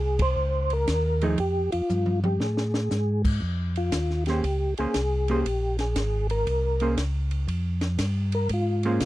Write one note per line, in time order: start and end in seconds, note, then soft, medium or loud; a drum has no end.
0.00 0.36 C2 medium
0.00 0.22 G#4 medium
0.19 0.73 C5 loud
0.19 kick medium
0.19 ride medium
0.36 0.86 C#2 medium
0.70 1.24 A#4 loud
0.70 ride soft
0.88 1.37 D#2 loud
0.88 kick soft
0.88 snare medium
0.88 hi-hat pedal medium
0.88 ride medium
1.21 1.38 F3 medium
1.21 1.38 A3 medium
1.21 1.38 D#4 medium
1.21 1.38 G#4 medium
1.21 ride soft
1.38 1.70 F2 medium
1.38 1.71 G4 loud
1.38 kick soft
1.38 ride medium
1.72 1.82 F2 soft
1.72 2.20 F4 medium
1.72 ride soft
1.90 2.39 G2 medium
1.90 hi-hat pedal medium
1.90 mid tom soft
2.06 mid tom soft
2.24 2.40 G4 medium
2.24 mid tom medium
2.40 2.90 A2 medium
2.40 3.22 G#4 medium
2.40 snare medium
2.57 snare medium
2.74 snare medium
2.91 3.40 G#2 loud
2.91 snare medium
2.91 hi-hat pedal medium
3.25 kick medium
3.25 crash medium
3.42 3.91 F2 medium
3.42 kick soft
3.76 4.24 F4 medium
3.76 ride soft
3.92 4.42 D#2 medium
3.92 kick soft
3.92 snare medium
3.92 hi-hat pedal medium
3.92 ride medium
4.10 snare soft
4.26 4.43 A#3 medium
4.26 4.43 C#4 soft
4.26 4.74 G4 medium
4.26 4.44 G#4 soft
4.26 4.44 C5 medium
4.26 snare soft
4.26 ride soft
4.44 4.75 C#2 medium
4.44 kick soft
4.44 ride medium
4.77 4.87 C#2 soft
4.77 4.94 A#3 medium
4.77 4.94 C#4 soft
4.77 5.42 G#4 medium
4.77 4.94 G#4 medium
4.77 4.94 C5 medium
4.77 ride soft
4.94 5.44 C2 medium
4.94 kick soft
4.94 snare medium
4.94 hi-hat pedal medium
4.94 ride medium
5.28 5.44 A#3 medium
5.28 5.44 C#4 medium
5.28 5.77 G4 medium
5.28 5.45 G#4 medium
5.28 5.45 C5 medium
5.28 ride soft
5.45 5.95 A#1 medium
5.45 kick soft
5.45 ride medium
5.79 6.27 G#4 medium
5.79 snare soft
5.79 ride soft
5.96 6.45 G#1 medium
5.96 kick soft
5.96 snare medium
5.96 hi-hat pedal medium
5.96 ride medium
6.30 6.95 A#4 medium
6.30 ride medium
6.47 6.96 C2 medium
6.47 kick soft
6.47 ride medium
6.80 6.97 A#3 medium
6.80 6.97 C#4 medium
6.80 6.97 G#4 medium
6.80 6.97 C5 medium
6.80 ride soft
6.97 7.47 C#2 medium
6.97 kick soft
6.97 snare medium
6.97 hi-hat pedal medium
6.97 ride medium
7.31 ride soft
7.48 7.98 F2 medium
7.48 kick soft
7.48 ride medium
7.81 snare medium
7.81 ride soft
7.99 8.49 G2 medium
7.99 kick soft
7.99 snare medium
7.99 hi-hat pedal medium
7.99 ride medium
8.32 8.51 A#4 loud
8.32 ride soft
8.49 9.00 G#2 medium
8.49 kick soft
8.49 ride medium
8.54 9.05 F4 medium
8.83 9.01 A#3 medium
8.83 9.01 C#4 medium
8.83 9.01 G#4 medium
8.83 9.01 C5 medium
8.83 ride soft
9.00 9.05 C3 loud
9.00 kick soft
9.00 snare medium
9.00 hi-hat pedal medium
9.00 ride medium